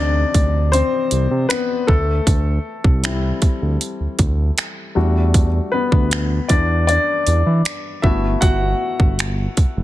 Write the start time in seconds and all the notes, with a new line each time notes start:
Already playing: D2 C3 C4 D4 D#4 D5 D#5
0.34 D2, kick, closed hi-hat
0.72 C4 C5, closed hi-hat
1.11 C2, closed hi-hat
1.31 C3
1.49 B3 B4, finger snap, closed hi-hat
1.87 D2 A3 A4, kick
2.27 D2, kick, closed hi-hat
2.84 C2, kick
3.03 G3 C4 E4, finger snap, closed hi-hat
3.42 D2, kick, closed hi-hat
3.62 D2
3.81 closed hi-hat
4.00 D2
4.19 D2, kick, closed hi-hat
4.58 finger snap, closed hi-hat
4.95 E2 G3 A3 D4 F#4
5.34 kick, closed hi-hat
5.72 B3 B4
5.92 D2, kick
6.11 finger snap, closed hi-hat
6.48 E2 D4 D5, kick, closed hi-hat
6.87 D4 D5, closed hi-hat
7.27 E2, closed hi-hat
7.46 E3
7.65 finger snap, closed hi-hat
8.02 G1 A3 B3 E4 F#4 E5, kick
8.41 G1 F#4 F#5, kick, closed hi-hat
9.00 G1, kick
9.19 finger snap, closed hi-hat
9.57 F#1, kick, closed hi-hat
9.77 F#1